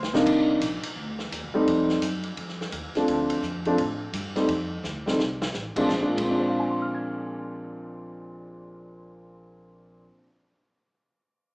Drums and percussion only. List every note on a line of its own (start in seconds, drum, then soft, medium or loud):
0.03 snare medium
0.15 snare medium
0.26 kick medium
0.26 crash medium
0.61 kick soft
0.61 hi-hat pedal medium
0.61 ride medium
0.83 ride medium
0.96 kick soft
1.19 snare soft
1.32 kick soft
1.32 hi-hat pedal medium
1.32 ride medium
1.67 kick soft
1.67 ride medium
1.89 snare medium
2.02 kick soft
2.02 hi-hat pedal medium
2.02 ride medium
2.23 ride soft
2.37 kick soft
2.37 ride medium
2.48 snare soft
2.61 snare soft
2.72 kick soft
2.72 hi-hat pedal medium
2.72 ride medium
2.95 snare soft
2.95 ride soft
3.08 kick soft
3.08 ride medium
3.30 ride medium
3.43 kick soft
3.43 hi-hat pedal medium
3.65 ride soft
3.78 kick soft
3.78 ride medium
4.13 kick soft
4.13 hi-hat pedal medium
4.13 ride medium
4.36 snare soft
4.36 ride soft
4.48 kick soft
4.48 ride medium
4.84 snare soft
4.84 hi-hat pedal medium
5.07 snare medium
5.19 snare medium
5.42 snare medium
5.54 snare medium
5.54 hi-hat pedal medium
5.76 kick medium
5.76 crash medium
5.89 kick medium
5.89 snare medium
6.17 kick medium
6.17 crash medium